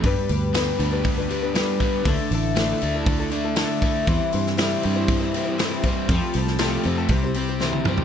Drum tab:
HH |o-o-o-o-o-o-o-o-|o-o-o-o-o-o-o-o-|o-o-o-o-o-o-o-o-|o-o-o-o-o-o-----|
SD |----o-------o---|----o-------o---|---oo-------o---|---oo-------o---|
T1 |----------------|----------------|----------------|-------------o--|
T2 |----------------|----------------|----------------|--------------o-|
FT |----------------|----------------|----------------|---------------o|
BD |o-------o-----o-|o-------o-----o-|o-------o-----o-|o-------o-------|